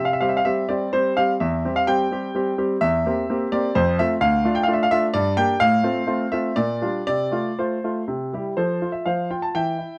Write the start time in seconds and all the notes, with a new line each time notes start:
0.00 C3
0.05 F5
0.13 E5
0.21 G3 C4 G4 F5
0.29 E5
0.37 F5
0.45 G3 C4 G4 E5
0.69 G3 C4 G4 D5
0.93 G3 C4 G4 C5
1.17 G3 C4 G4 F5
1.40 E2 E5
1.65 G3 C4 G4
1.76 F5
1.87 G3 C4 G4 G5
2.11 G3 C4 G4
2.35 G3 C4 G4
2.58 G3 C4 G4
2.81 E2 E5
3.06 A#3 C4 G4
3.30 A#3 C4 G4
3.52 A#3 C4 G4 D5
3.75 F2 C5
3.99 A3 C4 F4 E5
4.21 D2 F5
4.44 A3 D4 F4
4.55 G5
4.63 F5
4.68 A3 D4 F4
4.74 E5
4.83 F5
4.91 A3 D4 F4 E5
5.14 G2 D5
5.37 A#3 D4 G4 G5
5.60 A2 F5
5.83 A3 C4 F4
6.07 A3 C4 F4
6.32 A3 C4 F4 E5
6.56 A#2 D5
6.82 G3 D4 F4
7.07 C3 D5
7.32 A3 F4
7.59 A3 F4 C5
7.84 A3 F4
8.08 C3
8.33 G3 E4 G4
8.57 F3 A4 C5
8.82 F4
8.92 E5
9.06 F3 C5 F5
9.30 F4 G5
9.42 A5
9.55 E3 E5 G5
9.78 E4